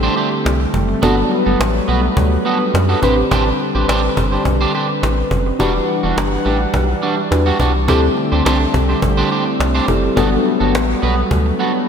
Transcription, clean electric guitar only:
0.03 0.15 D4 medium
0.03 0.15 G4 medium
0.03 0.16 C5 medium
0.16 0.30 D4 medium
0.16 0.31 G4 medium
0.16 0.30 C5 medium
0.31 muted clean electric guitar stroke soft
0.45 muted clean electric guitar stroke soft
0.60 muted clean electric guitar stroke soft
0.89 muted clean electric guitar stroke soft
1.02 1.20 B3 loud
1.02 1.17 F#4 medium
1.02 1.16 A4 medium
1.17 muted clean electric guitar stroke soft
1.31 muted clean electric guitar stroke soft
1.46 1.59 B3 soft
1.46 1.59 F#4 medium
1.46 1.58 A4 medium
1.75 muted clean electric guitar stroke soft
1.88 2.05 B3 medium
1.88 2.03 F#4 medium
1.88 2.03 B4 medium
2.03 muted clean electric guitar stroke soft
2.17 muted clean electric guitar stroke soft
2.32 muted clean electric guitar stroke medium
2.45 2.63 B3 medium
2.45 2.60 F#4 medium
2.45 2.59 A4 medium
2.60 muted clean electric guitar stroke soft
2.74 muted clean electric guitar stroke soft
2.89 3.05 B3 medium
2.89 3.02 F#4 medium
2.89 3.03 A4 medium
3.02 3.16 D4 medium
3.02 3.16 G4 medium
3.02 3.16 C5 medium
3.18 muted clean electric guitar stroke soft
3.31 3.48 D4 medium
3.31 3.46 G4 medium
3.31 3.45 C5 loud
3.46 muted clean electric guitar stroke soft
3.60 muted clean electric guitar stroke soft
3.75 3.87 D4 medium
3.75 3.87 G4 medium
3.75 3.87 C5 medium
3.88 4.05 D4 medium
3.88 4.03 G4 medium
3.88 4.02 C5 loud
4.04 muted clean electric guitar stroke medium
4.17 muted clean electric guitar stroke soft
4.32 4.44 D4 medium
4.32 4.44 G4 medium
4.32 4.44 C5 medium
4.46 muted clean electric guitar stroke soft
4.61 4.73 D4 medium
4.61 4.73 G4 medium
4.61 4.74 C5 medium
4.74 4.88 D4 medium
4.74 4.88 G4 medium
4.74 4.88 C5 medium
4.89 muted clean electric guitar stroke soft
5.03 muted clean electric guitar stroke soft
5.18 muted clean electric guitar stroke soft
5.46 muted clean electric guitar stroke medium
5.60 5.77 G3 medium
5.60 5.75 D4 loud
5.60 5.74 F#4 loud
5.75 muted clean electric guitar stroke soft
5.88 muted clean electric guitar stroke soft
6.03 6.16 G3 medium
6.03 6.16 D4 medium
6.03 6.15 F#4 medium
6.32 muted clean electric guitar stroke soft
6.45 6.62 G3 medium
6.45 6.60 D4 medium
6.45 6.60 G4 medium
6.60 muted clean electric guitar stroke soft
6.74 muted clean electric guitar stroke soft
6.89 muted clean electric guitar stroke soft
7.02 7.20 G3 medium
7.02 7.17 D4 medium
7.02 7.16 F#4 medium
7.17 muted clean electric guitar stroke soft
7.31 muted clean electric guitar stroke soft
7.46 7.58 G3 medium
7.46 7.59 D4 medium
7.46 7.59 F#4 medium
7.59 7.73 G3 medium
7.59 7.74 D4 medium
7.59 7.73 F#4 medium
7.75 muted clean electric guitar stroke soft
7.88 8.05 D4 medium
7.88 8.03 G4 medium
7.88 8.02 C5 loud
8.03 muted clean electric guitar stroke medium
8.17 muted clean electric guitar stroke soft
8.32 8.44 D4 medium
8.32 8.44 G4 medium
8.32 8.44 C5 medium
8.45 8.62 D4 medium
8.45 8.60 G4 medium
8.45 8.59 C5 loud
8.60 muted clean electric guitar stroke soft
8.74 muted clean electric guitar stroke soft
8.89 9.01 D4 soft
8.89 9.01 G4 soft
8.89 9.01 C5 medium
9.02 muted clean electric guitar stroke soft
9.17 9.30 D4 medium
9.17 9.30 G4 medium
9.17 9.31 C5 medium
9.31 9.45 D4 medium
9.31 9.45 G4 medium
9.31 9.45 C5 medium
9.46 muted clean electric guitar stroke soft
9.60 muted clean electric guitar stroke soft
9.75 9.87 D4 medium
9.75 9.87 G4 medium
9.75 9.88 C5 medium
9.88 muted clean electric guitar stroke medium
10.03 muted clean electric guitar stroke soft
10.16 10.34 B3 medium
10.16 10.31 F#4 medium
10.16 10.31 A4 medium
10.32 muted clean electric guitar stroke soft
10.45 muted clean electric guitar stroke soft
10.60 10.73 B3 medium
10.60 10.73 F#4 medium
10.60 10.73 A4 medium
10.89 muted clean electric guitar stroke soft
11.02 11.20 B3 medium
11.02 11.17 F#4 medium
11.02 11.17 B4 medium
11.17 muted clean electric guitar stroke soft
11.31 muted clean electric guitar stroke soft
11.46 muted clean electric guitar stroke medium
11.59 11.77 B3 medium
11.59 11.74 F#4 medium
11.59 11.73 A4 medium
11.75 muted clean electric guitar stroke soft

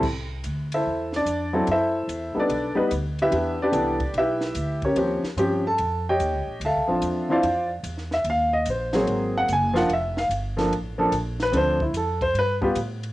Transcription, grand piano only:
0.74 1.12 E4 medium
0.74 1.11 A4 medium
0.74 1.12 C5 medium
0.74 1.12 E5 medium
1.16 1.66 D4 medium
1.16 1.66 D5 medium
1.53 1.66 F#3 medium
1.53 1.66 C4 medium
1.53 1.66 E4 medium
1.53 1.67 A4 medium
1.71 2.34 E4 medium
1.71 2.34 A4 medium
1.71 2.35 C5 medium
1.71 2.34 E5 loud
2.35 2.48 G3 medium
2.35 2.48 B3 medium
2.35 2.48 D#4 medium
2.35 2.38 A4 medium
2.39 2.76 D4 medium
2.39 2.76 A4 medium
2.39 2.76 B4 medium
2.39 2.76 D5 medium
2.75 2.89 G3 medium
2.75 2.89 B3 medium
2.75 2.89 D#4 medium
2.75 2.90 B4 medium
3.22 3.59 E4 medium
3.22 3.31 G4 medium
3.22 3.59 B4 medium
3.22 3.59 E5 loud
3.30 3.56 E3 medium
3.30 3.56 B3 soft
3.30 3.56 D4 medium
3.30 3.57 G4 medium
3.62 3.71 D4 medium
3.62 4.13 G4 medium
3.62 4.13 B4 medium
3.62 4.12 D5 medium
3.71 3.97 E3 medium
3.71 3.97 B3 medium
3.71 3.98 D4 medium
3.71 3.98 A4 medium
4.18 4.81 E4 medium
4.18 4.81 G4 medium
4.18 4.81 B4 medium
4.18 4.81 E5 loud
4.85 4.95 C#4 medium
4.85 4.96 G4 medium
4.85 5.22 A#4 medium
4.85 5.22 C#5 medium
4.96 5.21 F3 medium
4.96 5.21 C4 medium
4.96 5.22 C#4 medium
4.96 5.22 G4 medium
5.37 5.62 F3 medium
5.37 5.62 C4 medium
5.37 5.63 C#4 medium
5.37 5.63 G4 medium
5.67 6.05 A4 medium
5.67 6.04 A5 loud
6.09 6.59 G4 medium
6.09 6.59 C#5 medium
6.09 6.59 D#5 medium
6.09 6.59 G5 medium
6.65 7.28 A4 medium
6.65 7.28 E5 medium
6.65 7.28 F5 medium
6.65 7.27 A5 medium
6.87 7.26 F3 medium
6.87 7.26 C4 medium
6.87 7.27 D4 medium
6.87 7.27 F4 medium
7.29 7.41 E3 medium
7.29 7.42 C4 medium
7.29 7.42 D4 medium
7.29 7.43 E4 medium
7.29 7.69 F4 medium
7.29 7.69 C5 medium
7.29 7.69 D5 medium
7.29 7.69 F5 medium
8.14 8.26 E5 medium
8.30 8.54 F5 loud
8.53 8.66 D#5 medium
8.70 8.95 C5 medium
8.93 9.45 F#3 medium
8.93 9.46 A#3 medium
8.93 9.46 C4 medium
8.93 9.46 G#4 medium
8.93 9.08 C#5 medium
9.38 9.49 F#5 loud
9.53 9.77 G#5 loud
9.73 9.87 F3 medium
9.73 9.87 A#3 medium
9.73 9.88 D4 medium
9.73 9.88 F4 loud
9.73 9.90 F#5 loud
9.93 10.18 E5 medium
10.18 10.26 F5 loud
10.57 10.69 F3 medium
10.57 10.70 A#3 medium
10.57 10.70 D4 medium
10.57 10.70 A4 medium
10.98 11.11 F3 medium
10.98 11.11 A#3 medium
10.98 11.11 D4 medium
10.98 11.11 A4 medium
11.43 11.54 B4 loud
11.52 11.77 F3 medium
11.52 11.77 C4 medium
11.52 11.78 D4 medium
11.52 11.78 A4 medium
11.57 11.82 C5 loud
11.82 11.95 E4 medium
11.97 12.22 A4 medium
12.22 12.35 C5 loud
12.39 12.54 B4 loud
12.62 12.74 G3 medium
12.62 12.75 B3 medium
12.62 12.75 F4 medium
12.62 12.75 G4 medium

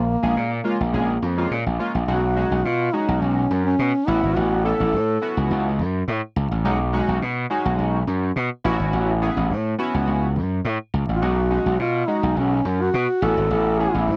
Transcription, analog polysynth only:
0.22 0.40 G#3 medium
0.22 0.40 A#3 medium
0.22 0.40 C#4 medium
0.22 0.40 G#4 loud
0.64 0.77 G#3 medium
0.64 0.77 A#3 medium
0.64 0.77 C#4 medium
0.64 0.77 F4 loud
0.93 1.12 G#3 medium
0.93 1.12 A#3 medium
0.93 1.12 C#4 medium
0.93 1.12 G#4 loud
1.38 1.54 G#3 medium
1.38 1.54 A#3 medium
1.38 1.55 C#4 medium
1.38 1.55 F4 loud
1.79 1.92 G#3 medium
1.79 1.92 A#3 medium
1.79 1.92 C#4 medium
1.79 1.92 F4 loud
2.08 2.20 G#3 medium
2.08 2.20 C#4 medium
2.08 2.20 D#4 medium
2.08 2.21 F#4 medium
2.36 2.60 G#3 medium
2.36 2.60 C#4 medium
2.36 2.60 D#4 medium
2.36 2.60 F#4 medium
2.93 3.41 G#3 medium
2.93 3.41 C#4 medium
2.93 3.41 D#4 medium
2.93 3.41 F#4 medium
4.07 4.54 B3 medium
4.07 4.54 C#4 medium
4.07 4.54 E4 medium
4.07 4.54 F#4 loud
4.65 4.89 B3 medium
4.65 4.89 C#4 medium
4.65 4.89 E4 medium
4.65 4.89 A4 medium
5.22 5.69 B3 medium
5.22 5.70 C#4 medium
5.22 5.70 E4 medium
5.22 5.70 F#4 loud
6.65 6.77 G#3 loud
6.65 6.77 C#4 medium
6.65 6.78 D#4 medium
6.65 6.78 F#4 loud
6.93 7.17 G#3 loud
6.93 7.17 C#4 medium
6.93 7.17 D#4 medium
6.93 7.18 F#4 loud
7.50 7.98 G#3 loud
7.50 7.98 C#4 medium
7.50 7.98 D#4 medium
7.50 7.98 F#4 loud
8.64 9.11 B3 loud
8.64 9.11 C#4 loud
8.64 9.11 E4 loud
8.64 9.12 F#4 loud
9.22 9.46 B3 medium
9.22 9.46 C#4 medium
9.22 9.46 E4 medium
9.22 9.46 G#4 loud
9.79 10.26 B3 loud
9.79 10.27 C#4 medium
9.79 10.27 E4 medium
9.79 10.27 F#4 loud
11.22 11.34 G#3 medium
11.22 11.34 C#4 medium
11.22 11.35 D#4 medium
11.22 11.35 F#4 medium
11.50 11.74 G#3 medium
11.50 11.75 C#4 medium
11.50 11.75 D#4 medium
11.50 11.75 F#4 medium
12.08 12.55 G#3 medium
12.08 12.55 C#4 medium
12.08 12.55 D#4 medium
12.08 12.56 F#4 medium
13.22 13.68 B3 medium
13.22 13.69 C#4 medium
13.22 13.69 E4 medium
13.22 13.69 F#4 loud
13.79 14.03 B3 medium
13.79 14.03 C#4 medium
13.79 14.03 E4 medium
13.79 14.04 G#4 medium

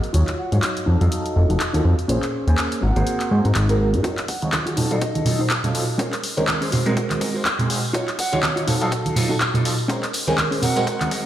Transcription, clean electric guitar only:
0.00 0.12 D#5 medium
0.13 0.62 F4 loud
0.13 0.63 F#4 medium
0.13 0.63 C#5 loud
0.86 1.35 D#4 medium
0.86 1.36 F#4 medium
0.86 1.36 A4 medium
1.49 1.60 D#4 medium
1.49 1.60 F#4 medium
1.49 1.61 A4 medium
1.73 1.91 D#4 medium
1.73 1.92 F#4 medium
1.73 1.92 A4 medium
2.08 2.57 C#4 loud
2.08 2.58 G#4 loud
2.08 2.58 C5 loud
2.81 3.30 C4 medium
2.81 3.31 F#4 medium
2.81 3.31 A#4 medium
3.44 3.55 C4 medium
3.44 3.55 F#4 medium
3.44 3.56 A#4 medium
3.68 3.86 C4 medium
3.68 3.87 F#4 medium
3.68 3.87 A#4 medium
4.03 4.17 F4 loud
4.03 4.18 F#4 loud
4.03 4.18 C#5 loud
4.28 muted clean electric guitar stroke soft
4.66 4.76 F4 medium
4.66 4.76 F#4 medium
4.66 4.77 G#4 medium
4.76 5.26 D#4 medium
4.76 5.26 F#4 medium
4.76 5.27 A4 loud
5.39 5.50 D#4 medium
5.39 5.51 F#4 medium
5.39 5.51 C5 medium
5.64 muted clean electric guitar stroke soft
5.98 6.13 C#4 loud
5.98 6.13 G#4 loud
5.98 6.14 C5 loud
6.23 muted clean electric guitar stroke soft
6.61 6.71 C#4 medium
6.61 6.72 G#4 medium
6.61 6.72 C5 medium
6.72 7.21 F#4 medium
6.72 7.21 A#4 medium
6.72 7.22 C5 loud
7.34 7.45 F#4 medium
7.34 7.46 A#4 medium
7.34 7.46 C5 loud
7.59 muted clean electric guitar stroke soft
7.93 8.08 F4 loud
7.93 8.08 F#4 loud
7.93 8.09 C#5 loud
8.18 muted clean electric guitar stroke soft
8.56 8.66 F4 medium
8.56 8.66 F#4 medium
8.56 8.68 C#5 loud
8.67 9.16 D#4 medium
8.67 9.16 F#4 medium
8.67 9.17 A4 loud
9.29 9.40 D#4 medium
9.29 9.41 F#4 medium
9.29 9.41 A4 loud
9.54 muted clean electric guitar stroke soft
9.88 10.03 C#4 loud
9.88 10.03 G#4 loud
9.88 10.04 C5 loud
10.13 muted clean electric guitar stroke soft
10.51 10.61 C#4 loud
10.51 10.62 G#4 medium
10.51 10.63 C5 loud
10.62 11.11 C4 medium
10.62 11.11 F#4 medium
10.62 11.12 A#4 loud

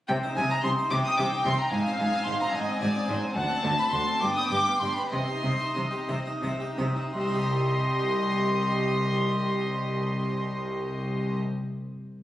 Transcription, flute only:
0.08 0.34 G5 medium
0.36 0.52 G#5 medium
0.50 0.66 A#5 medium
0.64 0.93 C6 medium
0.92 1.04 D6 medium
1.05 1.19 D#6 medium
1.20 1.46 D6 medium
1.47 1.53 C6 medium
1.61 1.67 A#5 medium
1.74 2.00 G#5 medium
2.02 2.28 G#5 medium
2.28 2.43 C6 medium
2.41 2.57 A#5 medium
2.55 3.36 G#5 loud
3.36 3.64 F#5 medium
3.65 3.78 A5 medium
3.79 3.85 B5 medium
3.93 4.00 C6 medium
4.22 4.28 D6 medium
4.37 4.51 D#6 medium
4.51 4.81 D6 loud
4.79 4.96 C6 medium
4.94 5.10 B5 medium
5.10 6.06 C6 medium
7.13 11.36 C6 medium

